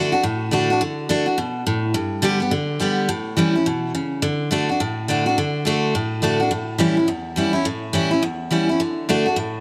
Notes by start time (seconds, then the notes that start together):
Already playing: D3 A3 D4 F#4
0.12 D4 F#4
0.23 A2
0.51 D3 A3 D4 F#4
0.70 D4 F#4
0.81 D3
1.09 D3 A3 D4 F#4
1.26 D4 F#4
1.38 B2
1.66 A2
1.94 G2
2.22 D3 G3 B3 G4
2.40 B3 G4
2.51 D3
2.80 D3 G3 B3 G4
3.09 A2
3.37 E3 G3 C#4 E4
3.55 C#4 E4
3.66 B2
3.95 C#3
4.22 D3
4.51 D3 A3 D4 F#4
4.69 D4 F#4
4.80 A2
5.08 D3 A3 D4 F#4
5.26 D4 F#4
5.38 D3
5.65 D3 A3 D4 F#4
5.95 A2
6.22 D3 A3 D4 F#4
6.40 D4 F#4
6.51 A2
6.78 E3 G3 C#4 E4
6.97 C#4 E4
7.08 E2
7.36 E3 G3 C#4 E4
7.53 C#4 E4
7.65 A2
7.93 E3 G3 C#4 E4
8.11 C#4 E4
8.23 E2
8.51 E3 G3 C#4 E4
8.69 C#4 E4
8.80 D3
9.09 D3 A3 D4 F#4
9.26 D4 F#4
9.36 A2